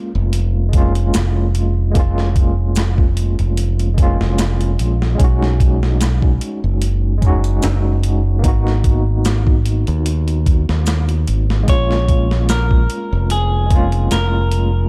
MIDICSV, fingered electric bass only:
0, 0, Header, 1, 2, 480
1, 0, Start_track
1, 0, Tempo, 810811
1, 1154, Time_signature, 4, 2, 24, 8
1, 8814, End_track
2, 0, Start_track
2, 0, Title_t, "Fingered electric bass"
2, 0, Program_c, 0, 33
2, 89, Note_on_c, 0, 29, 95
2, 656, Note_off_c, 0, 29, 0
2, 681, Note_on_c, 0, 29, 73
2, 1982, Note_off_c, 0, 29, 0
2, 2010, Note_on_c, 0, 29, 90
2, 2462, Note_off_c, 0, 29, 0
2, 2489, Note_on_c, 0, 29, 75
2, 2816, Note_off_c, 0, 29, 0
2, 2840, Note_on_c, 0, 34, 74
2, 3051, Note_off_c, 0, 34, 0
2, 3078, Note_on_c, 0, 35, 85
2, 3775, Note_off_c, 0, 35, 0
2, 3930, Note_on_c, 0, 30, 91
2, 4496, Note_off_c, 0, 30, 0
2, 4520, Note_on_c, 0, 30, 77
2, 4998, Note_off_c, 0, 30, 0
2, 4998, Note_on_c, 0, 32, 83
2, 5821, Note_off_c, 0, 32, 0
2, 5849, Note_on_c, 0, 39, 98
2, 6302, Note_off_c, 0, 39, 0
2, 6329, Note_on_c, 0, 39, 75
2, 6656, Note_off_c, 0, 39, 0
2, 6679, Note_on_c, 0, 32, 72
2, 6890, Note_off_c, 0, 32, 0
2, 6916, Note_on_c, 0, 34, 87
2, 7614, Note_off_c, 0, 34, 0
2, 7770, Note_on_c, 0, 29, 93
2, 8336, Note_off_c, 0, 29, 0
2, 8358, Note_on_c, 0, 29, 74
2, 8814, Note_off_c, 0, 29, 0
2, 8814, End_track
0, 0, End_of_file